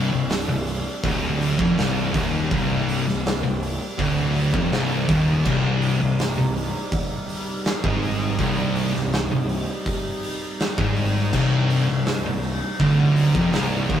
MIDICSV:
0, 0, Header, 1, 5, 480
1, 0, Start_track
1, 0, Key_signature, -3, "minor"
1, 0, Tempo, 734394
1, 1643, Time_signature, 4, 2, 24, 8
1, 9150, End_track
2, 0, Start_track
2, 0, Title_t, "Synth drone"
2, 0, Program_c, 0, 95
2, 0, Note_on_c, 0, 48, 81
2, 0, Note_on_c, 0, 55, 80
2, 0, Note_on_c, 0, 62, 91
2, 3542, Note_off_c, 0, 62, 0
2, 3566, Note_on_c, 0, 63, 88
2, 9150, Note_off_c, 0, 48, 0
2, 9150, Note_off_c, 0, 55, 0
2, 9150, Note_off_c, 0, 63, 0
2, 9150, End_track
3, 0, Start_track
3, 0, Title_t, "Distorted electric guitar"
3, 0, Program_c, 1, 30
3, 0, Note_on_c, 1, 36, 119
3, 70, Note_off_c, 1, 36, 0
3, 78, Note_on_c, 1, 36, 75
3, 271, Note_off_c, 1, 36, 0
3, 318, Note_on_c, 1, 36, 73
3, 511, Note_off_c, 1, 36, 0
3, 679, Note_on_c, 1, 38, 111
3, 1033, Note_off_c, 1, 38, 0
3, 1039, Note_on_c, 1, 41, 109
3, 1153, Note_off_c, 1, 41, 0
3, 1165, Note_on_c, 1, 36, 122
3, 1397, Note_off_c, 1, 36, 0
3, 1401, Note_on_c, 1, 39, 106
3, 1635, Note_off_c, 1, 39, 0
3, 1640, Note_on_c, 1, 36, 107
3, 1995, Note_off_c, 1, 36, 0
3, 2004, Note_on_c, 1, 36, 77
3, 2196, Note_off_c, 1, 36, 0
3, 2243, Note_on_c, 1, 36, 74
3, 2436, Note_off_c, 1, 36, 0
3, 2601, Note_on_c, 1, 38, 116
3, 2957, Note_off_c, 1, 38, 0
3, 2961, Note_on_c, 1, 41, 96
3, 3076, Note_off_c, 1, 41, 0
3, 3084, Note_on_c, 1, 36, 118
3, 3318, Note_off_c, 1, 36, 0
3, 3329, Note_on_c, 1, 39, 109
3, 3561, Note_off_c, 1, 39, 0
3, 3567, Note_on_c, 1, 36, 109
3, 3920, Note_off_c, 1, 36, 0
3, 3928, Note_on_c, 1, 36, 75
3, 4120, Note_off_c, 1, 36, 0
3, 4171, Note_on_c, 1, 36, 78
3, 4361, Note_off_c, 1, 36, 0
3, 5130, Note_on_c, 1, 44, 115
3, 5482, Note_off_c, 1, 44, 0
3, 5485, Note_on_c, 1, 36, 112
3, 5837, Note_off_c, 1, 36, 0
3, 5845, Note_on_c, 1, 36, 76
3, 6038, Note_off_c, 1, 36, 0
3, 6089, Note_on_c, 1, 36, 70
3, 6280, Note_off_c, 1, 36, 0
3, 7049, Note_on_c, 1, 44, 107
3, 7400, Note_off_c, 1, 44, 0
3, 7409, Note_on_c, 1, 36, 114
3, 7760, Note_off_c, 1, 36, 0
3, 7771, Note_on_c, 1, 36, 77
3, 7960, Note_off_c, 1, 36, 0
3, 8012, Note_on_c, 1, 36, 75
3, 8200, Note_off_c, 1, 36, 0
3, 8370, Note_on_c, 1, 38, 110
3, 8719, Note_off_c, 1, 38, 0
3, 8723, Note_on_c, 1, 41, 98
3, 8836, Note_off_c, 1, 41, 0
3, 8853, Note_on_c, 1, 36, 107
3, 9081, Note_off_c, 1, 36, 0
3, 9095, Note_on_c, 1, 39, 108
3, 9150, Note_off_c, 1, 39, 0
3, 9150, End_track
4, 0, Start_track
4, 0, Title_t, "Picked electric bass"
4, 0, Program_c, 2, 34
4, 78, Note_on_c, 2, 24, 94
4, 302, Note_off_c, 2, 24, 0
4, 316, Note_on_c, 2, 24, 81
4, 541, Note_off_c, 2, 24, 0
4, 678, Note_on_c, 2, 26, 99
4, 1015, Note_off_c, 2, 26, 0
4, 1040, Note_on_c, 2, 29, 102
4, 1152, Note_off_c, 2, 29, 0
4, 1163, Note_on_c, 2, 24, 99
4, 1386, Note_off_c, 2, 24, 0
4, 1401, Note_on_c, 2, 27, 105
4, 1626, Note_off_c, 2, 27, 0
4, 1644, Note_on_c, 2, 24, 108
4, 1979, Note_off_c, 2, 24, 0
4, 2006, Note_on_c, 2, 24, 88
4, 2229, Note_off_c, 2, 24, 0
4, 2245, Note_on_c, 2, 24, 82
4, 2468, Note_off_c, 2, 24, 0
4, 2609, Note_on_c, 2, 26, 99
4, 2943, Note_off_c, 2, 26, 0
4, 2969, Note_on_c, 2, 29, 105
4, 3079, Note_off_c, 2, 29, 0
4, 3093, Note_on_c, 2, 24, 102
4, 3313, Note_off_c, 2, 24, 0
4, 3327, Note_on_c, 2, 27, 94
4, 3550, Note_off_c, 2, 27, 0
4, 3565, Note_on_c, 2, 24, 94
4, 3901, Note_off_c, 2, 24, 0
4, 3926, Note_on_c, 2, 24, 100
4, 4150, Note_off_c, 2, 24, 0
4, 4172, Note_on_c, 2, 24, 79
4, 4393, Note_off_c, 2, 24, 0
4, 5124, Note_on_c, 2, 32, 104
4, 5461, Note_off_c, 2, 32, 0
4, 5484, Note_on_c, 2, 24, 95
4, 5820, Note_off_c, 2, 24, 0
4, 5850, Note_on_c, 2, 24, 92
4, 6072, Note_off_c, 2, 24, 0
4, 6087, Note_on_c, 2, 24, 78
4, 6310, Note_off_c, 2, 24, 0
4, 7048, Note_on_c, 2, 32, 101
4, 7381, Note_off_c, 2, 32, 0
4, 7407, Note_on_c, 2, 24, 102
4, 7741, Note_off_c, 2, 24, 0
4, 7772, Note_on_c, 2, 24, 95
4, 7992, Note_off_c, 2, 24, 0
4, 8012, Note_on_c, 2, 24, 87
4, 8232, Note_off_c, 2, 24, 0
4, 8365, Note_on_c, 2, 26, 94
4, 8699, Note_off_c, 2, 26, 0
4, 8725, Note_on_c, 2, 29, 97
4, 8836, Note_off_c, 2, 29, 0
4, 8852, Note_on_c, 2, 24, 102
4, 9071, Note_off_c, 2, 24, 0
4, 9086, Note_on_c, 2, 27, 104
4, 9150, Note_off_c, 2, 27, 0
4, 9150, End_track
5, 0, Start_track
5, 0, Title_t, "Drums"
5, 194, Note_on_c, 9, 46, 102
5, 201, Note_on_c, 9, 38, 110
5, 259, Note_off_c, 9, 46, 0
5, 266, Note_off_c, 9, 38, 0
5, 436, Note_on_c, 9, 46, 64
5, 502, Note_off_c, 9, 46, 0
5, 677, Note_on_c, 9, 36, 109
5, 677, Note_on_c, 9, 46, 87
5, 743, Note_off_c, 9, 36, 0
5, 743, Note_off_c, 9, 46, 0
5, 921, Note_on_c, 9, 46, 67
5, 987, Note_off_c, 9, 46, 0
5, 1040, Note_on_c, 9, 36, 115
5, 1105, Note_off_c, 9, 36, 0
5, 1162, Note_on_c, 9, 46, 88
5, 1169, Note_on_c, 9, 38, 118
5, 1228, Note_off_c, 9, 46, 0
5, 1235, Note_off_c, 9, 38, 0
5, 1401, Note_on_c, 9, 36, 115
5, 1402, Note_on_c, 9, 46, 68
5, 1466, Note_off_c, 9, 36, 0
5, 1468, Note_off_c, 9, 46, 0
5, 1642, Note_on_c, 9, 36, 111
5, 1643, Note_on_c, 9, 46, 74
5, 1708, Note_off_c, 9, 36, 0
5, 1708, Note_off_c, 9, 46, 0
5, 1886, Note_on_c, 9, 46, 62
5, 1952, Note_off_c, 9, 46, 0
5, 2016, Note_on_c, 9, 38, 34
5, 2082, Note_off_c, 9, 38, 0
5, 2129, Note_on_c, 9, 46, 84
5, 2137, Note_on_c, 9, 38, 124
5, 2195, Note_off_c, 9, 46, 0
5, 2202, Note_off_c, 9, 38, 0
5, 2371, Note_on_c, 9, 46, 67
5, 2436, Note_off_c, 9, 46, 0
5, 2608, Note_on_c, 9, 36, 95
5, 2611, Note_on_c, 9, 46, 78
5, 2673, Note_off_c, 9, 36, 0
5, 2676, Note_off_c, 9, 46, 0
5, 2850, Note_on_c, 9, 46, 71
5, 2916, Note_off_c, 9, 46, 0
5, 2966, Note_on_c, 9, 36, 111
5, 3031, Note_off_c, 9, 36, 0
5, 3086, Note_on_c, 9, 46, 90
5, 3093, Note_on_c, 9, 38, 107
5, 3151, Note_off_c, 9, 46, 0
5, 3159, Note_off_c, 9, 38, 0
5, 3326, Note_on_c, 9, 36, 122
5, 3327, Note_on_c, 9, 46, 74
5, 3391, Note_off_c, 9, 36, 0
5, 3393, Note_off_c, 9, 46, 0
5, 3566, Note_on_c, 9, 36, 106
5, 3566, Note_on_c, 9, 49, 96
5, 3631, Note_off_c, 9, 36, 0
5, 3631, Note_off_c, 9, 49, 0
5, 3803, Note_on_c, 9, 46, 66
5, 3868, Note_off_c, 9, 46, 0
5, 4045, Note_on_c, 9, 46, 94
5, 4052, Note_on_c, 9, 38, 124
5, 4111, Note_off_c, 9, 46, 0
5, 4118, Note_off_c, 9, 38, 0
5, 4284, Note_on_c, 9, 46, 70
5, 4349, Note_off_c, 9, 46, 0
5, 4521, Note_on_c, 9, 46, 84
5, 4524, Note_on_c, 9, 36, 110
5, 4586, Note_off_c, 9, 46, 0
5, 4589, Note_off_c, 9, 36, 0
5, 4763, Note_on_c, 9, 46, 66
5, 4828, Note_off_c, 9, 46, 0
5, 5000, Note_on_c, 9, 46, 90
5, 5007, Note_on_c, 9, 38, 114
5, 5065, Note_off_c, 9, 46, 0
5, 5073, Note_off_c, 9, 38, 0
5, 5123, Note_on_c, 9, 36, 108
5, 5189, Note_off_c, 9, 36, 0
5, 5242, Note_on_c, 9, 46, 73
5, 5308, Note_off_c, 9, 46, 0
5, 5479, Note_on_c, 9, 46, 83
5, 5483, Note_on_c, 9, 36, 99
5, 5545, Note_off_c, 9, 46, 0
5, 5548, Note_off_c, 9, 36, 0
5, 5723, Note_on_c, 9, 46, 62
5, 5788, Note_off_c, 9, 46, 0
5, 5850, Note_on_c, 9, 38, 36
5, 5915, Note_off_c, 9, 38, 0
5, 5965, Note_on_c, 9, 46, 87
5, 5972, Note_on_c, 9, 38, 118
5, 6030, Note_off_c, 9, 46, 0
5, 6038, Note_off_c, 9, 38, 0
5, 6203, Note_on_c, 9, 46, 65
5, 6269, Note_off_c, 9, 46, 0
5, 6445, Note_on_c, 9, 36, 92
5, 6447, Note_on_c, 9, 46, 81
5, 6511, Note_off_c, 9, 36, 0
5, 6512, Note_off_c, 9, 46, 0
5, 6686, Note_on_c, 9, 46, 66
5, 6752, Note_off_c, 9, 46, 0
5, 6926, Note_on_c, 9, 46, 87
5, 6933, Note_on_c, 9, 38, 114
5, 6991, Note_off_c, 9, 46, 0
5, 6998, Note_off_c, 9, 38, 0
5, 7046, Note_on_c, 9, 36, 109
5, 7111, Note_off_c, 9, 36, 0
5, 7167, Note_on_c, 9, 46, 75
5, 7232, Note_off_c, 9, 46, 0
5, 7406, Note_on_c, 9, 36, 98
5, 7407, Note_on_c, 9, 57, 102
5, 7472, Note_off_c, 9, 36, 0
5, 7472, Note_off_c, 9, 57, 0
5, 7648, Note_on_c, 9, 46, 63
5, 7713, Note_off_c, 9, 46, 0
5, 7881, Note_on_c, 9, 46, 91
5, 7888, Note_on_c, 9, 38, 117
5, 7947, Note_off_c, 9, 46, 0
5, 7954, Note_off_c, 9, 38, 0
5, 8123, Note_on_c, 9, 46, 71
5, 8189, Note_off_c, 9, 46, 0
5, 8365, Note_on_c, 9, 36, 101
5, 8366, Note_on_c, 9, 46, 83
5, 8430, Note_off_c, 9, 36, 0
5, 8431, Note_off_c, 9, 46, 0
5, 8603, Note_on_c, 9, 46, 69
5, 8669, Note_off_c, 9, 46, 0
5, 8724, Note_on_c, 9, 36, 111
5, 8790, Note_off_c, 9, 36, 0
5, 8842, Note_on_c, 9, 46, 101
5, 8849, Note_on_c, 9, 38, 124
5, 8907, Note_off_c, 9, 46, 0
5, 8914, Note_off_c, 9, 38, 0
5, 9082, Note_on_c, 9, 46, 73
5, 9083, Note_on_c, 9, 36, 113
5, 9147, Note_off_c, 9, 46, 0
5, 9149, Note_off_c, 9, 36, 0
5, 9150, End_track
0, 0, End_of_file